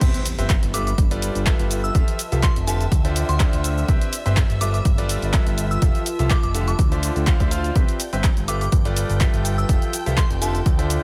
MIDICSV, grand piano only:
0, 0, Header, 1, 2, 480
1, 0, Start_track
1, 0, Key_signature, 0, "major"
1, 0, Tempo, 483871
1, 13, Time_signature, 4, 2, 24, 8
1, 10942, End_track
2, 0, Start_track
2, 0, Title_t, "Grand piano"
2, 0, Program_c, 0, 0
2, 12, Note_on_c, 0, 67, 76
2, 13, Note_on_c, 0, 60, 83
2, 13, Note_on_c, 0, 71, 75
2, 13, Note_on_c, 0, 72, 78
2, 13, Note_on_c, 0, 76, 90
2, 246, Note_off_c, 0, 60, 0
2, 246, Note_off_c, 0, 67, 0
2, 246, Note_off_c, 0, 71, 0
2, 246, Note_off_c, 0, 72, 0
2, 246, Note_off_c, 0, 76, 0
2, 382, Note_on_c, 0, 67, 79
2, 383, Note_on_c, 0, 60, 86
2, 383, Note_on_c, 0, 71, 78
2, 383, Note_on_c, 0, 72, 82
2, 383, Note_on_c, 0, 76, 98
2, 520, Note_off_c, 0, 67, 0
2, 521, Note_off_c, 0, 60, 0
2, 521, Note_off_c, 0, 71, 0
2, 521, Note_off_c, 0, 72, 0
2, 521, Note_off_c, 0, 76, 0
2, 732, Note_on_c, 0, 55, 85
2, 732, Note_on_c, 0, 65, 78
2, 732, Note_on_c, 0, 76, 96
2, 733, Note_on_c, 0, 69, 80
2, 733, Note_on_c, 0, 71, 79
2, 885, Note_off_c, 0, 55, 0
2, 885, Note_off_c, 0, 65, 0
2, 885, Note_off_c, 0, 69, 0
2, 885, Note_off_c, 0, 76, 0
2, 886, Note_off_c, 0, 71, 0
2, 1102, Note_on_c, 0, 55, 97
2, 1102, Note_on_c, 0, 69, 88
2, 1102, Note_on_c, 0, 71, 86
2, 1102, Note_on_c, 0, 74, 108
2, 1103, Note_on_c, 0, 65, 88
2, 1426, Note_off_c, 0, 55, 0
2, 1426, Note_off_c, 0, 74, 0
2, 1427, Note_off_c, 0, 65, 0
2, 1427, Note_off_c, 0, 69, 0
2, 1427, Note_off_c, 0, 71, 0
2, 1452, Note_on_c, 0, 65, 82
2, 1452, Note_on_c, 0, 69, 84
2, 1452, Note_on_c, 0, 71, 85
2, 1453, Note_on_c, 0, 55, 91
2, 1453, Note_on_c, 0, 76, 101
2, 1906, Note_off_c, 0, 55, 0
2, 1906, Note_off_c, 0, 65, 0
2, 1906, Note_off_c, 0, 69, 0
2, 1906, Note_off_c, 0, 71, 0
2, 1907, Note_off_c, 0, 76, 0
2, 1933, Note_on_c, 0, 53, 83
2, 1934, Note_on_c, 0, 65, 78
2, 1934, Note_on_c, 0, 67, 79
2, 1934, Note_on_c, 0, 69, 78
2, 1934, Note_on_c, 0, 76, 96
2, 2166, Note_off_c, 0, 53, 0
2, 2166, Note_off_c, 0, 69, 0
2, 2166, Note_off_c, 0, 76, 0
2, 2167, Note_off_c, 0, 65, 0
2, 2167, Note_off_c, 0, 67, 0
2, 2302, Note_on_c, 0, 65, 82
2, 2303, Note_on_c, 0, 53, 89
2, 2303, Note_on_c, 0, 67, 81
2, 2303, Note_on_c, 0, 69, 81
2, 2303, Note_on_c, 0, 76, 98
2, 2440, Note_off_c, 0, 53, 0
2, 2440, Note_off_c, 0, 65, 0
2, 2441, Note_off_c, 0, 67, 0
2, 2441, Note_off_c, 0, 69, 0
2, 2441, Note_off_c, 0, 76, 0
2, 2653, Note_on_c, 0, 50, 86
2, 2653, Note_on_c, 0, 65, 80
2, 2653, Note_on_c, 0, 67, 81
2, 2653, Note_on_c, 0, 69, 79
2, 2653, Note_on_c, 0, 76, 93
2, 2806, Note_off_c, 0, 50, 0
2, 2806, Note_off_c, 0, 65, 0
2, 2806, Note_off_c, 0, 67, 0
2, 2806, Note_off_c, 0, 69, 0
2, 2806, Note_off_c, 0, 76, 0
2, 3021, Note_on_c, 0, 65, 88
2, 3021, Note_on_c, 0, 76, 107
2, 3022, Note_on_c, 0, 50, 100
2, 3022, Note_on_c, 0, 72, 92
2, 3022, Note_on_c, 0, 74, 91
2, 3346, Note_off_c, 0, 50, 0
2, 3346, Note_off_c, 0, 65, 0
2, 3346, Note_off_c, 0, 74, 0
2, 3346, Note_off_c, 0, 76, 0
2, 3347, Note_off_c, 0, 72, 0
2, 3373, Note_on_c, 0, 50, 93
2, 3373, Note_on_c, 0, 72, 85
2, 3373, Note_on_c, 0, 74, 85
2, 3373, Note_on_c, 0, 76, 99
2, 3374, Note_on_c, 0, 65, 86
2, 3827, Note_off_c, 0, 50, 0
2, 3827, Note_off_c, 0, 65, 0
2, 3827, Note_off_c, 0, 72, 0
2, 3827, Note_off_c, 0, 74, 0
2, 3827, Note_off_c, 0, 76, 0
2, 3852, Note_on_c, 0, 71, 77
2, 3853, Note_on_c, 0, 60, 84
2, 3853, Note_on_c, 0, 67, 78
2, 3853, Note_on_c, 0, 72, 79
2, 3853, Note_on_c, 0, 76, 94
2, 4086, Note_off_c, 0, 60, 0
2, 4086, Note_off_c, 0, 67, 0
2, 4086, Note_off_c, 0, 71, 0
2, 4086, Note_off_c, 0, 72, 0
2, 4086, Note_off_c, 0, 76, 0
2, 4222, Note_on_c, 0, 60, 91
2, 4222, Note_on_c, 0, 67, 83
2, 4222, Note_on_c, 0, 71, 81
2, 4222, Note_on_c, 0, 72, 82
2, 4222, Note_on_c, 0, 76, 96
2, 4360, Note_off_c, 0, 60, 0
2, 4360, Note_off_c, 0, 67, 0
2, 4360, Note_off_c, 0, 71, 0
2, 4360, Note_off_c, 0, 72, 0
2, 4360, Note_off_c, 0, 76, 0
2, 4573, Note_on_c, 0, 55, 88
2, 4573, Note_on_c, 0, 65, 80
2, 4573, Note_on_c, 0, 69, 81
2, 4573, Note_on_c, 0, 71, 81
2, 4573, Note_on_c, 0, 76, 95
2, 4726, Note_off_c, 0, 55, 0
2, 4726, Note_off_c, 0, 65, 0
2, 4726, Note_off_c, 0, 69, 0
2, 4726, Note_off_c, 0, 71, 0
2, 4726, Note_off_c, 0, 76, 0
2, 4942, Note_on_c, 0, 55, 97
2, 4942, Note_on_c, 0, 65, 90
2, 4942, Note_on_c, 0, 69, 90
2, 4942, Note_on_c, 0, 71, 91
2, 4942, Note_on_c, 0, 74, 109
2, 5266, Note_off_c, 0, 55, 0
2, 5266, Note_off_c, 0, 69, 0
2, 5266, Note_off_c, 0, 74, 0
2, 5267, Note_off_c, 0, 65, 0
2, 5267, Note_off_c, 0, 71, 0
2, 5293, Note_on_c, 0, 55, 93
2, 5293, Note_on_c, 0, 65, 84
2, 5293, Note_on_c, 0, 69, 84
2, 5293, Note_on_c, 0, 76, 101
2, 5746, Note_off_c, 0, 55, 0
2, 5746, Note_off_c, 0, 69, 0
2, 5747, Note_off_c, 0, 65, 0
2, 5747, Note_off_c, 0, 76, 0
2, 5773, Note_on_c, 0, 67, 81
2, 5773, Note_on_c, 0, 69, 78
2, 5774, Note_on_c, 0, 53, 88
2, 5774, Note_on_c, 0, 65, 79
2, 5774, Note_on_c, 0, 76, 95
2, 6006, Note_off_c, 0, 53, 0
2, 6006, Note_off_c, 0, 67, 0
2, 6006, Note_off_c, 0, 69, 0
2, 6006, Note_off_c, 0, 76, 0
2, 6007, Note_off_c, 0, 65, 0
2, 6142, Note_on_c, 0, 53, 89
2, 6142, Note_on_c, 0, 69, 83
2, 6143, Note_on_c, 0, 65, 84
2, 6143, Note_on_c, 0, 67, 82
2, 6143, Note_on_c, 0, 76, 99
2, 6280, Note_off_c, 0, 53, 0
2, 6280, Note_off_c, 0, 67, 0
2, 6280, Note_off_c, 0, 69, 0
2, 6281, Note_off_c, 0, 65, 0
2, 6281, Note_off_c, 0, 76, 0
2, 6493, Note_on_c, 0, 50, 89
2, 6493, Note_on_c, 0, 69, 81
2, 6494, Note_on_c, 0, 65, 80
2, 6494, Note_on_c, 0, 67, 80
2, 6494, Note_on_c, 0, 76, 95
2, 6646, Note_off_c, 0, 50, 0
2, 6646, Note_off_c, 0, 65, 0
2, 6646, Note_off_c, 0, 67, 0
2, 6646, Note_off_c, 0, 69, 0
2, 6646, Note_off_c, 0, 76, 0
2, 6862, Note_on_c, 0, 65, 87
2, 6862, Note_on_c, 0, 72, 91
2, 6863, Note_on_c, 0, 50, 97
2, 6863, Note_on_c, 0, 74, 87
2, 6863, Note_on_c, 0, 76, 108
2, 7187, Note_off_c, 0, 50, 0
2, 7187, Note_off_c, 0, 65, 0
2, 7187, Note_off_c, 0, 72, 0
2, 7187, Note_off_c, 0, 74, 0
2, 7187, Note_off_c, 0, 76, 0
2, 7213, Note_on_c, 0, 50, 85
2, 7213, Note_on_c, 0, 65, 78
2, 7213, Note_on_c, 0, 74, 77
2, 7213, Note_on_c, 0, 77, 95
2, 7214, Note_on_c, 0, 72, 78
2, 7323, Note_off_c, 0, 50, 0
2, 7323, Note_off_c, 0, 65, 0
2, 7323, Note_off_c, 0, 72, 0
2, 7323, Note_off_c, 0, 74, 0
2, 7323, Note_off_c, 0, 77, 0
2, 7343, Note_on_c, 0, 72, 75
2, 7344, Note_on_c, 0, 50, 80
2, 7344, Note_on_c, 0, 65, 71
2, 7344, Note_on_c, 0, 74, 73
2, 7344, Note_on_c, 0, 76, 89
2, 7437, Note_off_c, 0, 50, 0
2, 7437, Note_off_c, 0, 65, 0
2, 7437, Note_off_c, 0, 72, 0
2, 7437, Note_off_c, 0, 74, 0
2, 7437, Note_off_c, 0, 76, 0
2, 7453, Note_on_c, 0, 65, 90
2, 7453, Note_on_c, 0, 72, 83
2, 7453, Note_on_c, 0, 74, 83
2, 7454, Note_on_c, 0, 77, 96
2, 7667, Note_off_c, 0, 65, 0
2, 7667, Note_off_c, 0, 72, 0
2, 7667, Note_off_c, 0, 74, 0
2, 7667, Note_off_c, 0, 77, 0
2, 7694, Note_on_c, 0, 60, 85
2, 7694, Note_on_c, 0, 67, 80
2, 7694, Note_on_c, 0, 71, 77
2, 7694, Note_on_c, 0, 72, 78
2, 7694, Note_on_c, 0, 76, 92
2, 7926, Note_off_c, 0, 60, 0
2, 7926, Note_off_c, 0, 67, 0
2, 7926, Note_off_c, 0, 76, 0
2, 7927, Note_off_c, 0, 71, 0
2, 7927, Note_off_c, 0, 72, 0
2, 8062, Note_on_c, 0, 67, 81
2, 8062, Note_on_c, 0, 72, 82
2, 8063, Note_on_c, 0, 60, 88
2, 8063, Note_on_c, 0, 71, 81
2, 8063, Note_on_c, 0, 76, 98
2, 8200, Note_off_c, 0, 67, 0
2, 8200, Note_off_c, 0, 72, 0
2, 8201, Note_off_c, 0, 60, 0
2, 8201, Note_off_c, 0, 71, 0
2, 8201, Note_off_c, 0, 76, 0
2, 8413, Note_on_c, 0, 55, 88
2, 8413, Note_on_c, 0, 65, 78
2, 8413, Note_on_c, 0, 71, 78
2, 8414, Note_on_c, 0, 69, 81
2, 8414, Note_on_c, 0, 76, 99
2, 8566, Note_off_c, 0, 55, 0
2, 8566, Note_off_c, 0, 65, 0
2, 8566, Note_off_c, 0, 69, 0
2, 8566, Note_off_c, 0, 71, 0
2, 8566, Note_off_c, 0, 76, 0
2, 8782, Note_on_c, 0, 55, 101
2, 8782, Note_on_c, 0, 69, 91
2, 8782, Note_on_c, 0, 74, 109
2, 8783, Note_on_c, 0, 65, 91
2, 8783, Note_on_c, 0, 71, 88
2, 9107, Note_off_c, 0, 55, 0
2, 9107, Note_off_c, 0, 65, 0
2, 9107, Note_off_c, 0, 69, 0
2, 9107, Note_off_c, 0, 71, 0
2, 9107, Note_off_c, 0, 74, 0
2, 9133, Note_on_c, 0, 55, 93
2, 9133, Note_on_c, 0, 65, 86
2, 9133, Note_on_c, 0, 69, 84
2, 9133, Note_on_c, 0, 71, 84
2, 9133, Note_on_c, 0, 76, 100
2, 9586, Note_off_c, 0, 71, 0
2, 9586, Note_off_c, 0, 76, 0
2, 9587, Note_off_c, 0, 55, 0
2, 9587, Note_off_c, 0, 65, 0
2, 9587, Note_off_c, 0, 69, 0
2, 9612, Note_on_c, 0, 53, 85
2, 9612, Note_on_c, 0, 65, 78
2, 9612, Note_on_c, 0, 67, 77
2, 9612, Note_on_c, 0, 69, 78
2, 9612, Note_on_c, 0, 76, 94
2, 9846, Note_off_c, 0, 53, 0
2, 9846, Note_off_c, 0, 65, 0
2, 9846, Note_off_c, 0, 67, 0
2, 9846, Note_off_c, 0, 69, 0
2, 9846, Note_off_c, 0, 76, 0
2, 9982, Note_on_c, 0, 53, 90
2, 9982, Note_on_c, 0, 65, 83
2, 9982, Note_on_c, 0, 67, 83
2, 9982, Note_on_c, 0, 69, 81
2, 9982, Note_on_c, 0, 76, 101
2, 10120, Note_off_c, 0, 53, 0
2, 10120, Note_off_c, 0, 65, 0
2, 10120, Note_off_c, 0, 67, 0
2, 10120, Note_off_c, 0, 69, 0
2, 10120, Note_off_c, 0, 76, 0
2, 10331, Note_on_c, 0, 65, 81
2, 10331, Note_on_c, 0, 67, 82
2, 10331, Note_on_c, 0, 69, 81
2, 10332, Note_on_c, 0, 50, 86
2, 10332, Note_on_c, 0, 76, 95
2, 10485, Note_off_c, 0, 50, 0
2, 10485, Note_off_c, 0, 65, 0
2, 10485, Note_off_c, 0, 67, 0
2, 10485, Note_off_c, 0, 69, 0
2, 10485, Note_off_c, 0, 76, 0
2, 10701, Note_on_c, 0, 50, 101
2, 10701, Note_on_c, 0, 65, 92
2, 10701, Note_on_c, 0, 72, 91
2, 10701, Note_on_c, 0, 74, 93
2, 10701, Note_on_c, 0, 76, 106
2, 10942, Note_off_c, 0, 50, 0
2, 10942, Note_off_c, 0, 65, 0
2, 10942, Note_off_c, 0, 72, 0
2, 10942, Note_off_c, 0, 74, 0
2, 10942, Note_off_c, 0, 76, 0
2, 10942, End_track
0, 0, End_of_file